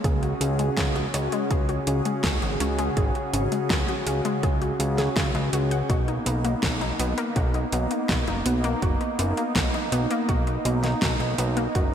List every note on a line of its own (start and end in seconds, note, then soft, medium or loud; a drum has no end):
0.04 0.34 C#2 loud
0.04 5.86 C#3 medium
0.04 5.86 C#4 medium
0.04 5.86 F#4 medium
0.04 5.86 G#4 medium
0.04 0.22 G#4 medium
0.04 kick loud
0.04 closed hi-hat medium
0.23 0.34 F#4 medium
0.23 closed hi-hat soft
0.41 0.70 C#2 medium
0.41 0.58 C#4 medium
0.41 closed hi-hat medium
0.59 0.66 G#3 medium
0.59 closed hi-hat medium
0.77 1.07 C#2 medium
0.77 0.89 G#4 medium
0.77 kick loud
0.77 snare loud
0.77 closed hi-hat medium
0.96 1.08 F#4 medium
0.96 closed hi-hat soft
1.14 1.29 C#2 medium
1.14 1.21 C#4 loud
1.14 closed hi-hat medium
1.32 1.44 G#3 loud
1.32 closed hi-hat soft
1.51 1.80 C#2 medium
1.51 1.68 G#4 medium
1.51 kick loud
1.51 closed hi-hat soft
1.69 1.81 F#4 medium
1.69 closed hi-hat soft
1.87 2.02 C#2 medium
1.87 2.05 C#4 medium
1.87 closed hi-hat medium
2.05 2.13 G#3 medium
2.05 closed hi-hat soft
2.24 2.39 C#2 loud
2.24 2.36 G#4 medium
2.24 kick loud
2.24 snare loud
2.24 closed hi-hat soft
2.42 2.57 G#1 medium
2.42 2.54 F#4 medium
2.42 closed hi-hat soft
2.60 2.90 C#2 medium
2.60 2.67 C#4 loud
2.60 closed hi-hat medium
2.79 2.90 G#3 loud
2.79 closed hi-hat medium
2.97 3.12 G#1 medium
2.97 3.14 G#4 medium
2.97 kick loud
2.97 closed hi-hat medium
3.15 3.27 F#4 medium
3.15 closed hi-hat soft
3.33 3.48 G#1 medium
3.33 3.51 C#4 medium
3.33 closed hi-hat medium
3.52 3.59 G#3 medium
3.52 closed hi-hat soft
3.70 3.85 C#2 medium
3.70 3.82 G#4 medium
3.70 kick loud
3.70 snare loud
3.70 closed hi-hat soft
3.88 4.00 F#4 medium
3.88 closed hi-hat soft
4.07 4.21 C#2 medium
4.07 4.14 C#4 loud
4.07 closed hi-hat medium
4.25 4.37 G#3 loud
4.25 closed hi-hat soft
4.43 4.73 C#2 medium
4.43 4.61 G#4 medium
4.43 kick loud
4.43 closed hi-hat soft
4.62 4.73 F#4 medium
4.62 closed hi-hat soft
4.80 5.09 C#2 loud
4.80 4.97 G#3 medium
4.80 closed hi-hat medium
4.98 5.15 G#4 loud
4.98 snare soft
4.98 closed hi-hat soft
5.17 5.31 C#2 loud
5.17 5.28 G#4 medium
5.17 kick loud
5.17 snare loud
5.17 closed hi-hat soft
5.35 5.49 C#2 medium
5.35 5.47 G#3 medium
5.35 closed hi-hat soft
5.53 5.82 C#2 medium
5.53 5.65 F#4 medium
5.53 closed hi-hat medium
5.71 5.78 F#5 medium
5.71 closed hi-hat soft
5.90 6.19 B1 loud
5.90 11.71 A#3 medium
5.90 11.71 B3 medium
5.90 11.94 D#4 medium
5.90 6.07 F#4 medium
5.90 kick loud
5.90 closed hi-hat soft
6.08 6.20 D#4 medium
6.08 closed hi-hat soft
6.26 6.56 B1 medium
6.26 6.44 B3 medium
6.26 closed hi-hat medium
6.45 6.52 A#3 medium
6.45 closed hi-hat soft
6.63 6.92 B1 medium
6.63 6.75 F#4 medium
6.63 kick loud
6.63 snare loud
6.63 closed hi-hat soft
6.81 6.93 D#4 medium
6.81 closed hi-hat soft
6.99 7.14 B1 medium
6.99 7.07 B3 loud
6.99 closed hi-hat medium
7.18 7.30 A#3 loud
7.18 closed hi-hat soft
7.36 7.65 B1 medium
7.36 7.54 F#4 medium
7.36 kick loud
7.36 closed hi-hat soft
7.54 7.66 D#4 medium
7.54 closed hi-hat soft
7.72 7.87 B1 medium
7.72 7.90 B3 medium
7.72 closed hi-hat medium
7.91 7.98 A#3 medium
7.91 closed hi-hat soft
8.09 8.24 B1 loud
8.09 8.21 F#4 medium
8.09 kick loud
8.09 snare loud
8.09 closed hi-hat soft
8.27 8.42 F#1 medium
8.27 8.39 D#4 medium
8.27 closed hi-hat soft
8.46 8.75 B1 medium
8.46 8.53 B3 loud
8.46 closed hi-hat medium
8.64 8.76 A#3 loud
8.64 closed hi-hat soft
8.82 8.97 F#1 medium
8.82 9.00 F#4 medium
8.82 kick loud
8.82 closed hi-hat soft
9.01 9.12 D#4 medium
9.01 closed hi-hat soft
9.19 9.34 F#1 medium
9.19 9.36 B3 medium
9.19 closed hi-hat medium
9.37 9.44 A#3 medium
9.37 closed hi-hat soft
9.55 9.70 B1 medium
9.55 9.67 F#4 medium
9.55 kick loud
9.55 snare loud
9.55 closed hi-hat soft
9.74 9.86 D#4 medium
9.74 closed hi-hat soft
9.92 10.07 B1 medium
9.92 9.99 B3 loud
9.92 closed hi-hat medium
10.11 10.22 A#3 loud
10.11 closed hi-hat soft
10.29 10.58 B1 medium
10.29 10.46 F#4 medium
10.29 kick loud
10.29 closed hi-hat soft
10.47 10.59 D#4 medium
10.47 closed hi-hat soft
10.65 10.95 B1 loud
10.65 10.83 B3 medium
10.65 closed hi-hat medium
10.84 10.91 A#3 medium
10.84 snare soft
10.84 closed hi-hat soft
11.02 11.17 B1 loud
11.02 11.14 F#4 medium
11.02 kick loud
11.02 snare loud
11.02 closed hi-hat soft
11.20 11.35 B1 medium
11.20 11.32 D#4 medium
11.20 closed hi-hat soft
11.38 11.68 B1 medium
11.38 11.46 B3 loud
11.38 closed hi-hat medium
11.57 11.69 A#3 loud
11.57 closed hi-hat soft
11.75 11.94 F#1 loud
11.75 11.94 F#3 medium
11.75 11.94 C#4 medium
11.75 11.92 F#4 medium
11.75 11.94 A#4 medium
11.75 kick loud
11.75 closed hi-hat soft